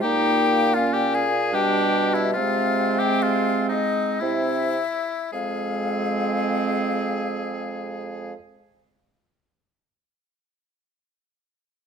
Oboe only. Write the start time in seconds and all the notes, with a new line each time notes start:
0.02 G4
0.74 F4
0.93 G4
1.14 G#4
1.54 G4
2.14 E4
2.33 F4
2.98 G4
3.23 F4
3.69 D#4
4.20 E4
5.32 G#4